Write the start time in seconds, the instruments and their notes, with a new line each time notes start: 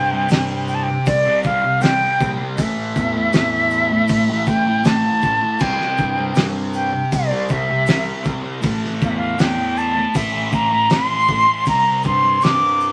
Already playing: fingered electric bass G2, distorted electric guitar C3 G3 C4, flute G5
0.12 distorted electric guitar G3 C4
0.29 fingered electric bass G2, distorted electric guitar C3 G3, snare, open hi-hat, maracas
0.33 distorted electric guitar C4
0.68 flute G5, maracas
0.75 flute A5
0.83 flute G5
0.88 muted distorted electric guitar stroke
1.06 fingered electric bass C2, flute D5, kick, open hi-hat, maracas
1.26 distorted electric guitar G3 C4
1.43 distorted electric guitar C3 G3 C4, flute F5, kick, maracas
1.63 muted distorted electric guitar stroke
1.81 distorted electric guitar C3 G3 C4, flute G5, snare, open hi-hat, maracas
2.19 fingered electric bass A#1, distorted electric guitar C3 G3 C4, kick, maracas
2.39 distorted electric guitar G3 C4
2.56 fingered electric bass A1, distorted electric guitar A2 E3 A3, flute E5, kick, open hi-hat, maracas
2.96 fingered electric bass E2, kick, maracas
3.13 distorted electric guitar E3 A3
3.33 fingered electric bass E2, distorted electric guitar A2 E3 A3, snare, open hi-hat, maracas
3.70 maracas
3.91 muted distorted electric guitar stroke
4.08 fingered electric bass A1, kick, open hi-hat, maracas
4.29 distorted electric guitar E3 A3
4.46 distorted electric guitar A2 E3 A3, flute G5, kick, maracas
4.67 muted distorted electric guitar stroke
4.84 distorted electric guitar A2 E3 A3, flute A5, snare, open hi-hat, maracas
5.22 fingered electric bass A1, distorted electric guitar A2 E3 A3, kick, maracas
5.41 distorted electric guitar E3 A3
5.59 fingered electric bass C2, distorted electric guitar C3 G3 C4, flute G5, kick, crash, maracas
5.81 snare
5.97 fingered electric bass G2, kick, maracas
6.17 distorted electric guitar G3 C4
6.35 fingered electric bass G2, distorted electric guitar C3 G3 C4, snare, open hi-hat, maracas
6.73 flute G5, maracas
6.93 muted distorted electric guitar stroke
7.12 fingered electric bass C2, flute D5, kick, open hi-hat, maracas
7.30 distorted electric guitar G3 C4
7.49 distorted electric guitar C3 G3 C4, flute E5, kick, maracas
7.70 muted distorted electric guitar stroke
7.86 distorted electric guitar C3 G3 C4, snare, open hi-hat, maracas
8.24 fingered electric bass C2, distorted electric guitar C3 G3 C4, kick, maracas
8.43 distorted electric guitar G3 C4
8.61 fingered electric bass A1, distorted electric guitar A2 E3 A3, kick, open hi-hat, maracas
8.84 snare
9.01 fingered electric bass E2, flute F5, kick, maracas
9.09 flute E5
9.17 distorted electric guitar E3 A3, flute F5
9.37 fingered electric bass E2, distorted electric guitar A2 E3 A3, flute G5, snare, open hi-hat, maracas
9.77 flute A5, maracas
9.95 muted distorted electric guitar stroke
10.14 fingered electric bass A1, flute E5, kick, open hi-hat, maracas
10.32 distorted electric guitar E3 A3
10.51 distorted electric guitar A2 E3 A3, flute A#5, kick, maracas
10.71 muted distorted electric guitar stroke
10.89 distorted electric guitar A2 E3 A3, flute C6, snare, open hi-hat, maracas
11.28 fingered electric bass A1, distorted electric guitar A2 E3 A3, kick, maracas
11.47 distorted electric guitar E3 A3
11.65 fingered electric bass C2, distorted electric guitar C3 G3 C4, flute A#5, kick, open hi-hat, maracas
12.03 fingered electric bass G2, flute C6, kick, maracas
12.23 distorted electric guitar G3 C4
12.41 fingered electric bass G2, distorted electric guitar C3 G3 C4, flute D6, snare, open hi-hat, maracas
12.80 maracas